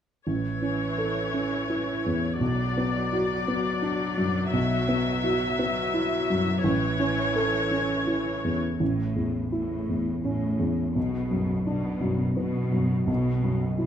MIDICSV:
0, 0, Header, 1, 4, 480
1, 0, Start_track
1, 0, Key_signature, 3, "major"
1, 0, Tempo, 709220
1, 180, Time_signature, 3, 2, 24, 8
1, 4975, Tempo, 725514
1, 6895, Tempo, 710059
1, 9335, End_track
2, 0, Start_track
2, 0, Title_t, "Viola section"
2, 0, Program_c, 0, 48
2, 186, Note_on_c, 0, 73, 29
2, 187, Note_on_c, 0, 52, 31
2, 1602, Note_off_c, 0, 52, 0
2, 1602, Note_off_c, 0, 73, 0
2, 1629, Note_on_c, 0, 74, 34
2, 1630, Note_on_c, 0, 54, 32
2, 3031, Note_off_c, 0, 74, 0
2, 3058, Note_on_c, 0, 76, 43
2, 4465, Note_off_c, 0, 54, 0
2, 4465, Note_off_c, 0, 76, 0
2, 4491, Note_on_c, 0, 52, 44
2, 4491, Note_on_c, 0, 73, 47
2, 5778, Note_off_c, 0, 52, 0
2, 5804, Note_off_c, 0, 73, 0
2, 9335, End_track
3, 0, Start_track
3, 0, Title_t, "Grand piano"
3, 0, Program_c, 1, 0
3, 181, Note_on_c, 1, 33, 27
3, 286, Control_c, 1, 64, 127
3, 421, Note_on_c, 1, 61, 20
3, 665, Note_on_c, 1, 69, 24
3, 812, Note_off_c, 1, 61, 0
3, 907, Note_on_c, 1, 61, 21
3, 1053, Note_off_c, 1, 69, 0
3, 1147, Note_on_c, 1, 64, 23
3, 1292, Note_off_c, 1, 61, 0
3, 1395, Note_on_c, 1, 40, 24
3, 1529, Note_off_c, 1, 64, 0
3, 1599, Note_off_c, 1, 33, 0
3, 1628, Note_on_c, 1, 35, 29
3, 1629, Note_off_c, 1, 40, 0
3, 1639, Control_c, 1, 64, 0
3, 1764, Control_c, 1, 64, 127
3, 1877, Note_on_c, 1, 59, 24
3, 2116, Note_on_c, 1, 66, 28
3, 2255, Note_off_c, 1, 59, 0
3, 2355, Note_on_c, 1, 59, 27
3, 2493, Note_off_c, 1, 66, 0
3, 2587, Note_on_c, 1, 62, 27
3, 2729, Note_off_c, 1, 59, 0
3, 2826, Note_on_c, 1, 42, 30
3, 2964, Note_off_c, 1, 62, 0
3, 3031, Note_off_c, 1, 35, 0
3, 3060, Note_off_c, 1, 42, 0
3, 3066, Note_on_c, 1, 35, 34
3, 3070, Control_c, 1, 64, 0
3, 3176, Control_c, 1, 64, 127
3, 3306, Note_on_c, 1, 59, 31
3, 3546, Note_on_c, 1, 66, 35
3, 3684, Note_off_c, 1, 59, 0
3, 3784, Note_on_c, 1, 59, 31
3, 3923, Note_off_c, 1, 66, 0
3, 4021, Note_on_c, 1, 64, 32
3, 4160, Note_off_c, 1, 59, 0
3, 4264, Note_on_c, 1, 42, 32
3, 4399, Note_off_c, 1, 64, 0
3, 4468, Note_off_c, 1, 35, 0
3, 4496, Note_on_c, 1, 33, 39
3, 4497, Note_off_c, 1, 42, 0
3, 4503, Control_c, 1, 64, 0
3, 4633, Control_c, 1, 64, 127
3, 4735, Note_on_c, 1, 61, 29
3, 4979, Note_on_c, 1, 69, 33
3, 5117, Note_off_c, 1, 61, 0
3, 5215, Note_on_c, 1, 61, 29
3, 5358, Note_off_c, 1, 69, 0
3, 5451, Note_on_c, 1, 64, 27
3, 5600, Note_off_c, 1, 61, 0
3, 5698, Note_on_c, 1, 40, 26
3, 5842, Note_off_c, 1, 64, 0
3, 5914, Note_off_c, 1, 33, 0
3, 5935, Note_on_c, 1, 33, 30
3, 5939, Note_off_c, 1, 40, 0
3, 5950, Control_c, 1, 64, 0
3, 6051, Control_c, 1, 64, 127
3, 6172, Note_on_c, 1, 40, 23
3, 6411, Note_on_c, 1, 64, 28
3, 6558, Note_off_c, 1, 40, 0
3, 6655, Note_on_c, 1, 40, 23
3, 6795, Note_off_c, 1, 64, 0
3, 6890, Note_on_c, 1, 61, 25
3, 7037, Note_off_c, 1, 40, 0
3, 7124, Note_on_c, 1, 40, 27
3, 7277, Note_off_c, 1, 61, 0
3, 7346, Note_off_c, 1, 33, 0
3, 7370, Note_off_c, 1, 40, 0
3, 7370, Note_on_c, 1, 35, 32
3, 7388, Control_c, 1, 64, 0
3, 7484, Control_c, 1, 64, 127
3, 7608, Note_on_c, 1, 42, 25
3, 7849, Note_on_c, 1, 62, 27
3, 7996, Note_off_c, 1, 42, 0
3, 8082, Note_on_c, 1, 42, 25
3, 8236, Note_off_c, 1, 62, 0
3, 8324, Note_on_c, 1, 59, 27
3, 8471, Note_off_c, 1, 42, 0
3, 8562, Note_on_c, 1, 42, 28
3, 8710, Note_off_c, 1, 59, 0
3, 8782, Note_off_c, 1, 35, 0
3, 8799, Note_on_c, 1, 35, 34
3, 8806, Note_off_c, 1, 42, 0
3, 8823, Control_c, 1, 64, 0
3, 8934, Control_c, 1, 64, 127
3, 9039, Note_on_c, 1, 42, 25
3, 9281, Note_on_c, 1, 64, 29
3, 9335, Note_off_c, 1, 35, 0
3, 9335, Note_off_c, 1, 42, 0
3, 9335, Note_off_c, 1, 64, 0
3, 9335, End_track
4, 0, Start_track
4, 0, Title_t, "Cello section"
4, 0, Program_c, 2, 48
4, 5936, Note_on_c, 2, 45, 37
4, 6359, Note_off_c, 2, 45, 0
4, 6410, Note_on_c, 2, 45, 33
4, 6833, Note_off_c, 2, 45, 0
4, 6887, Note_on_c, 2, 45, 34
4, 7315, Note_off_c, 2, 45, 0
4, 7374, Note_on_c, 2, 47, 34
4, 7799, Note_off_c, 2, 47, 0
4, 7852, Note_on_c, 2, 47, 37
4, 8276, Note_off_c, 2, 47, 0
4, 8330, Note_on_c, 2, 47, 37
4, 8753, Note_off_c, 2, 47, 0
4, 8808, Note_on_c, 2, 47, 38
4, 9233, Note_off_c, 2, 47, 0
4, 9288, Note_on_c, 2, 47, 39
4, 9335, Note_off_c, 2, 47, 0
4, 9335, End_track
0, 0, End_of_file